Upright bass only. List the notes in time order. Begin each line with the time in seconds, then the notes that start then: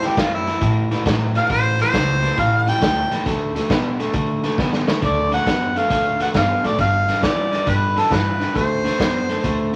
0.17 F#2
0.61 A2
1.06 A2
1.50 A1
1.94 C#2
2.38 A1
2.82 D2
3.11 E2
3.26 D2
3.70 B2
4.14 D3
4.58 D3
5.02 D2
5.46 F#2
5.90 D2
6.35 G2
6.64 A2
6.79 G1
7.23 E2
7.67 G2
8.11 G2
8.55 D2
9.00 F#2
9.44 D2